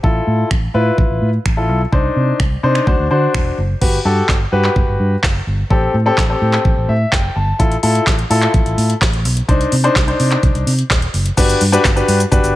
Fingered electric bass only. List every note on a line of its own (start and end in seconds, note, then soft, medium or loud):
0.04 0.19 A1 loud
0.27 0.43 A2 medium
0.51 0.66 A1 medium
0.74 0.90 A2 medium
0.98 1.06 A1 loud
1.10 1.18 A1 medium
1.22 1.37 A2 loud
1.46 1.69 A1 medium
1.69 1.84 B1 medium
1.93 2.08 C2 loud
2.16 2.32 C3 medium
2.40 2.55 C2 loud
2.63 2.79 C3 medium
2.87 2.95 D2 loud
2.99 3.07 D2 medium
3.11 3.26 D3 medium
3.35 3.50 E1 medium
3.58 3.73 F#1 medium
3.82 3.97 G1 loud
4.05 4.21 G2 medium
4.29 4.44 G1 medium
4.52 4.68 G2 medium
4.76 4.84 G1 loud
4.88 4.95 G1 medium
5.00 5.15 G2 medium
5.23 5.39 F#1 medium
5.47 5.62 G1 medium
5.71 5.86 A1 loud
5.94 6.09 A2 medium
6.18 6.33 A1 loud
6.42 6.57 A2 loud
6.65 6.73 A1 loud
6.77 6.85 A1 medium
6.89 7.04 A2 loud
7.13 7.28 F#1 medium
7.36 7.51 G1 medium
7.60 7.75 A1 loud
7.83 7.99 A2 loud
8.07 8.22 A1 loud
8.30 8.46 A2 loud
8.54 8.62 A1 loud
8.66 8.73 A1 medium
8.78 8.93 A2 medium
9.02 9.25 A1 medium
9.25 9.40 B1 medium
9.49 9.64 C2 loud
9.72 9.88 C3 medium
9.96 10.11 C2 loud
10.20 10.35 C3 medium
10.43 10.51 C2 medium
10.55 10.62 C2 medium
10.67 10.82 C3 medium
10.91 11.06 D#1 medium
11.14 11.29 F#1 medium
11.38 11.53 G1 loud
11.61 11.77 G2 loud
11.85 12.00 G1 loud
12.08 12.24 G2 loud
12.32 12.40 G1 loud
12.43 12.51 G1 loud